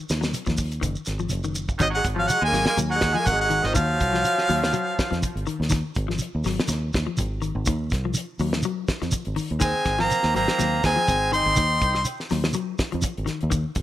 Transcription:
0.09 D#2, snare, closed hi-hat, shekere
0.21 F#3, snare, shekere
0.33 closed hi-hat, shekere
0.46 D#2 F3, kick, snare, shekere
0.57 kick, open hi-hat, shekere
0.72 closed hi-hat, shekere
0.81 F#1 D#3, kick, closed hi-hat, shekere
0.95 shekere
1.05 G#1, snare, closed hi-hat, shekere
1.19 F3, shekere
1.29 F#1, closed hi-hat, shekere
1.44 D#3, shekere
1.55 closed hi-hat, shekere
1.69 kick, shekere
1.78 G#1 D#3 F#3 D#5, kick, closed hi-hat, shekere
1.90 F#3
1.95 G#3 F#5
2.04 G#1, kick, closed hi-hat, shekere
2.15 F3 F#3
2.19 F5
2.27 F#3 F#5, closed hi-hat, shekere
2.32 G#3
2.41 D#2 G#3 G#5
2.47 A#3
2.52 G#1 F#3, snare, open hi-hat, shekere
2.65 G#3 A#3 G#5, snare, closed hi-hat
2.77 D#2 F#3, closed hi-hat, shekere
2.89 F#3 F#5
2.95 G#3
3.01 D#2, kick, snare, closed hi-hat, shekere
3.13 F3 G#3 G#5
3.20 A#3
3.25 G#1 F#3 F#5, kick, closed hi-hat, shekere
3.32 G#3
3.38 F#3 F#5
3.45 G#3
3.50 D#3, closed hi-hat, shekere
3.63 G#1 D#3 F3 D#5, snare
3.74 D#2 D#3 F3 F#3 F5, kick, closed hi-hat, shekere
4.00 C2, kick, closed hi-hat, shekere
4.13 F3, snare
4.24 closed hi-hat, shekere
4.38 snare
4.49 D#2 F#3, open hi-hat, shekere
4.64 snare
4.73 F#3, closed hi-hat, shekere
4.99 kick, snare, closed hi-hat, shekere
5.11 F2 F3, snare, closed hi-hat
5.22 kick, closed hi-hat, shekere
5.36 G#1, closed hi-hat
5.46 D#3, closed hi-hat, shekere
5.60 D#2, snare, closed hi-hat
5.70 D#3, kick, snare, closed hi-hat, shekere
5.95 G#1, kick, closed hi-hat, shekere
6.08 F3, snare
6.18 closed hi-hat, shekere
6.35 D#2
6.44 G#1 F#3, snare, open hi-hat, shekere
6.59 snare, closed hi-hat
6.68 D#2, muted clean electric guitar stroke, snare, closed hi-hat, shekere
6.93 D#2, kick, snare, closed hi-hat, shekere
7.07 F3
7.17 G#1, kick, closed hi-hat, shekere
7.42 D#3, closed hi-hat, shekere
7.55 G#1
7.66 D#2 D#3, kick, closed hi-hat, shekere
7.90 C2, kick, snare, closed hi-hat, shekere
8.05 F3
8.14 closed hi-hat, shekere
8.39 D#2 F#3, open hi-hat, shekere
8.53 snare
8.62 F#3, closed hi-hat, shekere
8.88 kick, snare, closed hi-hat, shekere
9.02 F2 F3, snare, closed hi-hat
9.11 muted fingered electric bass stroke, kick, closed hi-hat, shekere
9.25 G#1, closed hi-hat
9.36 D#3, open hi-hat, shekere
9.50 D#2, closed hi-hat
9.60 D#3 G#3 C4 G#5, kick, closed hi-hat, shekere
9.85 G#1, kick, snare, closed hi-hat, shekere
9.98 F3 A#3 A#5, snare
10.03 C4
10.10 closed hi-hat, shekere
10.23 D#2, snare
10.34 G#1 F#3 A#3 C4 A#5, open hi-hat, shekere
10.48 snare, closed hi-hat
10.58 D#2 F#3, snare, closed hi-hat, shekere
10.83 D#2 G#3 C4 G#5, kick, snare, closed hi-hat, shekere
10.96 F3
11.08 G#1, kick, closed hi-hat, shekere
11.32 D#3 C4 D#4 C6, closed hi-hat, shekere
11.46 G#1
11.56 D#2 D#3, kick, closed hi-hat, shekere
11.81 C2, kick, closed hi-hat, shekere
11.95 muted clean electric guitar stroke, snare
12.05 closed hi-hat, shekere
12.20 snare
12.29 D#2 F#3, snare, open hi-hat, shekere
12.44 snare
12.53 F#3, closed hi-hat, shekere
12.78 kick, snare, closed hi-hat, shekere
12.92 F2 F3, closed hi-hat
13.02 muted fingered electric bass stroke, kick, closed hi-hat, shekere
13.17 G#1, closed hi-hat
13.26 D#3, snare, closed hi-hat, shekere
13.41 D#2, closed hi-hat
13.50 D#3, kick, closed hi-hat, shekere
13.75 G#1, kick, closed hi-hat, shekere

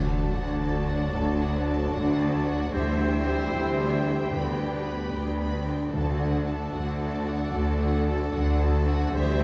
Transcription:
Already playing: D2 D3 F#3 A3 D4 F#4 A4 D5 A5
0.06 F#4 A4 A5
0.32 D2 D4 F#4 F#5
0.60 F#4 A4 A5
0.87 D4 F#4 F#5
1.13 D2 F#4 A4 A5
1.40 D4 F#4 F#5
1.66 F#4 A4 A5
1.93 D2 D4 F#4 F#5
2.19 F#4 A4 A5
2.46 D4 F#4 F#5
2.72 D2 E3 G3 C4 E4 G4 C5 E5 G5
2.99 E4 E5 G5
3.25 G4 C5 E5
3.52 D2 E4 E5 G5
3.78 G4 C5 E5
4.04 E4 E5 G5
4.32 D2 D3 B3 D4 B4 B5
4.58 D4 D5 G5
4.85 B3 B4 B5
5.12 D2 D4 D5 G5
5.39 B3 B4 B5
5.65 D4 D5 G5
5.91 D2 D3 A3 D4 F#4 A4 D5 F#5 A5
6.19 D4 F#4 F#5
6.45 F#4 A4 A5
6.72 D2 D4 F#4 F#5
7.00 F#4 A4 A5
7.27 D4 F#4 F#5
7.53 D2 F#4 A4 A5
7.79 D4 F#4 F#5
8.05 F#4 A4 A5
8.33 D2 D4 F#4 F#5
8.60 F#4 A4 A5
8.86 D4 F#4 F#5
9.13 D2 E3 G3 C4 E4 G4 C5 E5 G5
9.39 E4

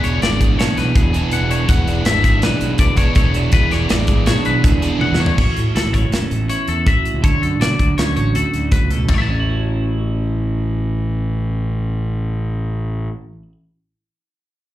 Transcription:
Already playing: E2 E3 B3 D4 G#4
0.04 E1 D4 C#5, closed hi-hat
0.21 G#1 E3 D5, snare, closed hi-hat
0.40 G#4, kick, closed hi-hat
0.59 B1 D4 C#5, snare, closed hi-hat
0.77 B1 B2 B4, snare, closed hi-hat
0.95 D2 B3 G#4, kick, closed hi-hat
1.04 E1
1.13 B3 D4 G#4, closed hi-hat
1.17 E3
1.31 E2 B3 F#5, closed hi-hat
1.41 E1
1.50 D4 C#5, closed hi-hat
1.68 E1 E2 E3 B3 D4 G#4 F#5, kick, closed hi-hat
1.87 E1 D4, closed hi-hat
2.04 G#1 E3 E5, snare, closed hi-hat
2.23 G#4 E5, kick, closed hi-hat
2.42 B1 D4 B4, snare, closed hi-hat
2.61 B1 B2, closed hi-hat
2.78 D2 B3 D5, kick, closed hi-hat
2.90 E1
2.96 E3 B3 D4 G#4 C#5, kick, closed hi-hat
3.15 E2 A3 C#5, kick, closed hi-hat
3.25 E1 B3
3.34 D4, closed hi-hat
3.52 E1 E2 E3 B3 D4 G#4 B4, kick, closed hi-hat
3.71 E1 D4 C#5, snare, closed hi-hat
3.89 G#1 E3 D5, snare, closed hi-hat
4.07 G#4, kick, closed hi-hat
4.26 B1 D4 C#5, snare, closed hi-hat
4.45 B1 B2 B4, closed hi-hat
4.63 D2 A3 G#4, kick, closed hi-hat
4.72 E1 B3
4.81 B3 D4 G#4, closed hi-hat
4.86 E3
4.99 E2 B3 F#5, high tom
5.12 E2, snare
5.18 D4 C#5
5.26 floor tom
5.37 A1 A2 F#4 C#5, kick, crash
5.57 A2, closed hi-hat
5.75 C#2 E3 E4 A4, snare, closed hi-hat
5.85 A1
5.93 C#5, kick, closed hi-hat
6.04 F#1
6.12 C#4 A4, snare, closed hi-hat
6.31 A1 E2, closed hi-hat
6.49 E4 C#5, closed hi-hat
6.68 E2 A4, closed hi-hat
6.86 A2 F#4 E5, kick, closed hi-hat
7.05 closed hi-hat
7.14 C#2
7.22 D2 D3 A4 C#5, kick, closed hi-hat
7.42 F#2 A4, closed hi-hat
7.60 B2 F#3 F#4 D5, snare, closed hi-hat
7.79 D2, kick, closed hi-hat
7.98 D2 C#4 C#5, snare, closed hi-hat
8.16 A1 A2 C#5, closed hi-hat
8.35 D2 F#4 A4, closed hi-hat
8.54 D2, closed hi-hat
8.72 C#3 B4, kick, closed hi-hat
8.82 C#2
8.91 B2 A4, closed hi-hat
9.01 F#2
9.09 A1 A2 A4, kick, floor tom, china
9.14 C#5
9.18 E3 E5 A5
9.30 C#4
9.40 E4
9.50 F#4

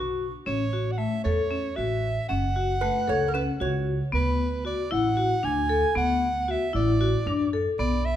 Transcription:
Already playing: B1 F#4
0.46 A1 C#4 C#5
0.73 F#4
0.92 F#5
0.98 A3 E5
1.24 E2 A4 C#5
1.51 C#4
1.76 A1 F#4 E5
2.29 F#1 C#4 F#5
2.56 F#4
2.81 A3 B4
3.08 C#2 A4 C#5
3.28 A#4
3.34 C#4 B4
3.60 C#2 F#4 C#5
4.12 D2 B3 B4
4.65 F#4 D5
4.91 A1 E4 F#5
5.17 F#4
5.43 D2 D4 G#5
5.69 A4
5.95 D2 B3 F#5
6.48 F#4 E5
6.73 A1 E4 D5
7.01 F#4
7.26 F#2 D4
7.53 A4
7.79 B1 B3 D5
8.05 E5

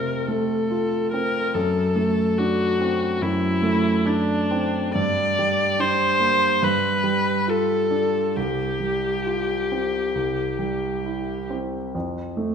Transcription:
Already playing: F2 C3 A3 C4 F4 A#4
0.27 A3 A4
0.71 F4
1.12 C4 A#4
1.54 F#2 A4
1.96 A3
2.38 D4 F#4
2.81 C4
3.22 F#2 E4
3.62 A3
4.06 D4
4.51 C4
4.95 G2 D5
5.39 G3
5.79 D4 C5
6.20 A#3
6.62 G2 B4
7.04 G3
7.47 F4 A4
7.91 D4
8.36 C2 G4
8.80 G3
9.26 F4
9.72 C4
10.15 C2
10.59 G3
11.06 E4
11.50 C4
11.95 F2
12.37 A3

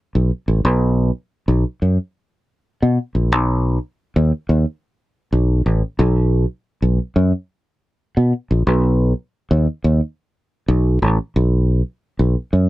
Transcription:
0.15 B1
0.48 A1
0.65 B1
1.48 B1
1.82 F#2
2.82 B2
3.15 A#1
3.32 B1
4.16 D#2
4.49 D#2
5.32 B1
5.66 A1
5.99 B1
6.82 B1
7.16 F#2
8.17 B2
8.51 A#1
8.67 B1
9.51 D#2
9.84 D#2
10.68 B1
11.02 A1
11.36 B1
12.19 B1
12.53 F#2

